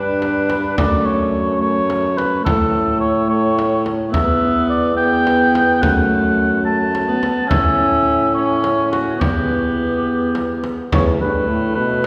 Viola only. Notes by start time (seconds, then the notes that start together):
Already playing: D4
0.78 A3
1.62 A3
2.46 A3
3.29 A3
4.13 B3
4.98 B3
5.82 A3
6.66 A3
7.08 B3
7.50 C#4
8.35 C#4
9.21 B3
10.92 A3